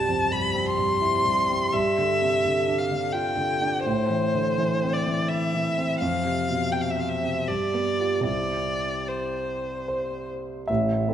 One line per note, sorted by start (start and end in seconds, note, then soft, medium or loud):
0.00 1.69 C2 soft
0.00 0.23 G2 soft
0.00 0.34 A5 medium
0.08 0.32 F2 soft
0.31 0.69 G2 soft
0.31 0.68 B5 medium
0.54 0.92 C4 soft
0.67 1.75 C6 medium
0.78 1.15 G2 soft
1.01 1.39 E4 soft
1.25 1.63 G2 soft
1.49 1.73 C4 soft
1.73 3.82 G2 soft
1.73 2.80 E5 medium
1.98 2.36 D3 soft
2.22 2.45 C3 soft
2.45 2.82 D3 soft
2.68 3.05 D4 soft
2.78 3.14 F5 medium
2.91 3.28 D3 soft
3.13 3.52 F4 soft
3.13 3.84 G5 medium
3.37 3.75 D3 soft
3.62 3.86 D4 soft
3.84 5.98 A2 soft
3.84 4.95 C5 medium
4.10 4.48 E3 soft
4.35 4.58 D3 soft
4.58 4.97 E3 soft
4.83 5.21 C4 soft
4.93 5.30 D5 medium
5.07 5.45 E3 soft
5.29 5.68 E4 soft
5.29 5.99 E5 medium
5.55 5.92 E3 soft
5.78 6.01 C4 soft
6.00 7.44 F2 soft
6.00 6.73 F5 medium
6.25 6.63 C3 soft
6.50 6.73 B2 soft
6.72 7.12 C3 soft
6.72 6.83 G5 soft
6.82 6.92 F5 medium
6.91 7.02 E5 soft
6.97 7.37 C4 soft
6.97 7.11 F5 soft
7.09 7.50 E5 medium
7.23 7.48 C3 soft
7.48 8.24 G2 soft
7.48 8.26 D5 medium
7.74 8.16 B3 soft
8.00 8.24 F4 soft
8.00 8.23 G4 soft
8.21 10.62 C2 soft
8.21 10.63 C4 soft
8.21 10.64 E4 soft
8.21 10.64 G4 soft
8.26 9.09 D5 medium
9.08 10.30 C5 soft
9.88 10.69 C5 soft
10.68 11.06 A1 soft
10.68 11.06 A2 soft
10.68 11.14 E5 medium
11.08 11.14 C4 soft
11.08 11.14 E4 soft
11.08 11.14 A4 soft